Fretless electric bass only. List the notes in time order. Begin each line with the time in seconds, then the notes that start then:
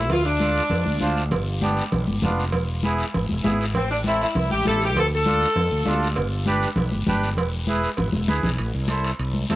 Already playing: A1
0.11 D2
0.72 F2
0.86 D2
1.02 D2
1.31 G1
1.92 B1
2.07 G1
2.23 F1
2.54 E1
3.15 G#1
3.31 E1
3.45 G#1
3.76 A1
4.36 C2
4.52 A1
4.67 A1
4.96 D2
5.56 F2
5.72 D2
5.87 D2
6.17 G1
6.76 B1
6.93 G1
7.07 G1
7.37 E1
7.98 G#1
8.13 E1
8.29 D2
8.44 B1
8.59 A1
8.75 C2
9.19 C2
9.50 E2